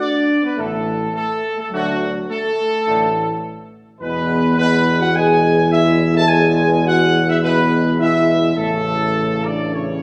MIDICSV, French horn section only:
0, 0, Header, 1, 2, 480
1, 0, Start_track
1, 0, Tempo, 572519
1, 1449, Time_signature, 4, 2, 24, 8
1, 8405, End_track
2, 0, Start_track
2, 0, Title_t, "French horn section"
2, 0, Program_c, 0, 60
2, 0, Note_on_c, 0, 62, 65
2, 351, Note_on_c, 0, 59, 69
2, 360, Note_off_c, 0, 62, 0
2, 469, Note_on_c, 0, 57, 59
2, 470, Note_off_c, 0, 59, 0
2, 929, Note_off_c, 0, 57, 0
2, 945, Note_on_c, 0, 57, 63
2, 1291, Note_off_c, 0, 57, 0
2, 1311, Note_on_c, 0, 57, 65
2, 1369, Note_off_c, 0, 57, 0
2, 1423, Note_on_c, 0, 54, 69
2, 1883, Note_off_c, 0, 54, 0
2, 1922, Note_on_c, 0, 57, 76
2, 2847, Note_off_c, 0, 57, 0
2, 3363, Note_on_c, 0, 59, 79
2, 3806, Note_off_c, 0, 59, 0
2, 3836, Note_on_c, 0, 59, 83
2, 4167, Note_off_c, 0, 59, 0
2, 4188, Note_on_c, 0, 66, 84
2, 4300, Note_off_c, 0, 66, 0
2, 4312, Note_on_c, 0, 68, 79
2, 4753, Note_off_c, 0, 68, 0
2, 4789, Note_on_c, 0, 64, 80
2, 5145, Note_on_c, 0, 69, 78
2, 5147, Note_off_c, 0, 64, 0
2, 5246, Note_on_c, 0, 68, 71
2, 5256, Note_off_c, 0, 69, 0
2, 5701, Note_off_c, 0, 68, 0
2, 5749, Note_on_c, 0, 66, 83
2, 6081, Note_off_c, 0, 66, 0
2, 6112, Note_on_c, 0, 64, 73
2, 6163, Note_off_c, 0, 64, 0
2, 6224, Note_on_c, 0, 59, 73
2, 6667, Note_off_c, 0, 59, 0
2, 6692, Note_on_c, 0, 64, 82
2, 7144, Note_off_c, 0, 64, 0
2, 7182, Note_on_c, 0, 57, 74
2, 7876, Note_off_c, 0, 57, 0
2, 7918, Note_on_c, 0, 62, 61
2, 8140, Note_off_c, 0, 62, 0
2, 8153, Note_on_c, 0, 61, 54
2, 8405, Note_off_c, 0, 61, 0
2, 8405, End_track
0, 0, End_of_file